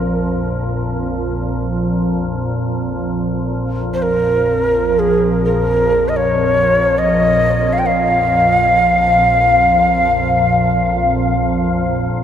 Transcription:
Already playing: ambient pad A#1 F2
3.94 native american-style wooden flute C5
4.02 native american-style wooden flute A#4
4.74 ambient pad A#1 F2
4.99 native american-style wooden flute G#4
5.45 native american-style wooden flute A#4
6.09 native american-style wooden flute D#5
6.17 native american-style wooden flute C#5
6.98 native american-style wooden flute D#5
7.73 native american-style wooden flute F5
7.79 native american-style wooden flute G5
7.86 native american-style wooden flute F5

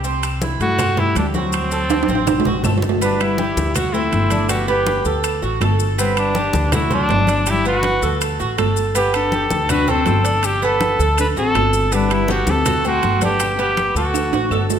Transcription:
Already playing: upright bass C2
0.04 cuban tres C4, high conga, maracas
0.23 high conga, high timbale, claves, maracas
0.42 cuban tres E4, high conga, maracas
0.60 upright bass G2, nylon-string guitar A3, trumpet F#4, high conga, high timbale, maracas
0.78 cuban tres C4, high conga, low conga, high timbale, claves, maracas
0.97 nylon-string guitar G3, trumpet E4, cuban tres G4, high conga, low conga
1.15 upright bass D2, nylon-string guitar G3, trumpet D4, high conga, high timbale, low timbale, maracas
1.34 nylon-string guitar F#3, cuban tres F#4, high conga, maracas
1.38 trumpet C4
1.52 high conga, high timbale, claves, maracas
1.71 cuban tres A4, high conga, maracas
1.90 high conga, high timbale, maracas
2.03 high timbale
2.08 upright bass A1, cuban tres C4, high conga, maracas
2.15 high timbale
2.27 low conga, high timbale, claves, maracas
2.40 low timbale
2.45 upright bass A1, cuban tres F#4, low conga
2.64 upright bass G1, cuban tres A4, low conga, low timbale, claves, maracas
2.78 low timbale
2.82 low conga, maracas
2.89 low timbale
3.01 nylon-string guitar G3, cuban tres B3, trumpet D4, high conga, high timbale, maracas
3.20 nylon-string guitar G3, trumpet E4, high conga, high timbale, claves, maracas
3.38 cuban tres G4, high conga, maracas
3.56 upright bass D2, high conga, maracas
3.74 nylon-string guitar A3, trumpet F#4, cuban tres F#4, high conga, low conga, high timbale, claves, maracas
3.93 nylon-string guitar A3, cuban tres C4, trumpet E4, high conga, maracas
4.12 upright bass G1, high conga, high timbale, maracas
4.30 cuban tres D4, high conga, high timbale, maracas
4.49 nylon-string guitar B3, trumpet F#4, cuban tres G4, high timbale, claves, maracas
4.68 nylon-string guitar B3, cuban tres B3, trumpet G4, high conga, maracas
4.87 high conga, high timbale, maracas
5.05 upright bass D2, cuban tres A4, high conga, maracas
5.24 high conga, high timbale, claves, maracas
5.42 upright bass A1, cuban tres F#4, high conga, maracas
5.61 upright bass G1, cuban tres A4, high conga, high timbale, low timbale, claves, maracas
5.79 high conga, maracas
5.98 nylon-string guitar G3, cuban tres B3, trumpet C4, high conga, high timbale, maracas
6.17 nylon-string guitar G3, trumpet D4, high conga, high timbale, claves, maracas
6.35 cuban tres G4, high conga, maracas
6.53 upright bass D2, high conga, maracas
6.72 nylon-string guitar A3, trumpet E4, cuban tres F#4, high conga, low conga, high timbale, claves, maracas
6.90 nylon-string guitar F#3, cuban tres C4, trumpet D4, high conga, low conga, maracas
7.09 upright bass G1, high conga, high timbale, low timbale, maracas
7.27 cuban tres D4, high conga, high timbale, maracas
7.46 nylon-string guitar G3, cuban tres G4, high conga, high timbale, claves, maracas
7.50 trumpet E4
7.64 cuban tres B3, nylon-string guitar B3, trumpet F#4, high conga, maracas
7.83 high conga, high timbale, maracas
8.01 upright bass D2, cuban tres A4, high conga, maracas
8.20 high conga, high timbale, claves, maracas
8.39 upright bass A1, cuban tres F#4, high conga, maracas
8.58 upright bass G1, cuban tres A4, high conga, high timbale, low timbale, claves, maracas
8.76 high conga, maracas
8.95 cuban tres B3, nylon-string guitar B3, trumpet G4, high conga, high timbale, maracas
9.13 nylon-string guitar D4, trumpet A4, high conga, high timbale, claves, maracas
9.32 cuban tres G4, high conga, maracas
9.50 upright bass D2, high conga, maracas
9.69 nylon-string guitar D4, cuban tres F#4, trumpet B4, high conga, low conga, high timbale, claves, maracas
9.88 cuban tres C4, nylon-string guitar C4, trumpet A4, high conga, low conga, maracas
10.06 upright bass G1, high conga, high timbale, low timbale, maracas
10.24 cuban tres D4, high timbale, maracas
10.43 nylon-string guitar B3, cuban tres G4, trumpet G4, high conga, high timbale, claves, maracas
10.62 cuban tres B3, nylon-string guitar D4, trumpet A4, high conga, maracas
10.80 high conga, high timbale, maracas
10.99 upright bass D2, cuban tres A4, high conga, maracas
11.17 nylon-string guitar D4, trumpet B4, high conga, high timbale, claves, maracas
11.36 upright bass A1, nylon-string guitar C4, cuban tres F#4, trumpet A4, high conga, maracas
11.55 upright bass G1, cuban tres A4, high conga, high timbale, low timbale, claves, maracas
11.73 high conga, maracas
11.91 nylon-string guitar G3, cuban tres B3, trumpet D4, high conga, high timbale, maracas
12.10 nylon-string guitar G3, trumpet E4, high conga, high timbale, claves, maracas
12.28 nylon-string guitar B3, trumpet F#4, cuban tres G4, high conga, maracas
12.47 upright bass D2, nylon-string guitar C4, trumpet A4, high conga, maracas
12.66 cuban tres F#4, high conga, low conga, high timbale, claves, maracas
12.84 nylon-string guitar A3, cuban tres C4, trumpet F#4, high conga, maracas
13.02 upright bass G1, high conga, high timbale, maracas
13.21 nylon-string guitar B3, cuban tres D4, trumpet G4, high conga, high timbale, maracas
13.40 cuban tres G4, high conga, high timbale, claves, maracas
13.58 nylon-string guitar B3, cuban tres B3, trumpet G4, high conga, maracas
13.77 high conga, high timbale, maracas
13.95 upright bass D2, nylon-string guitar A3, trumpet F#4, cuban tres A4, high conga, maracas
14.14 high conga, high timbale, claves, maracas
14.32 upright bass A1, cuban tres F#4, high conga, high timbale, maracas
14.51 upright bass G1, cuban tres A4, high conga, low timbale, claves, maracas
14.69 high conga, low timbale, maracas

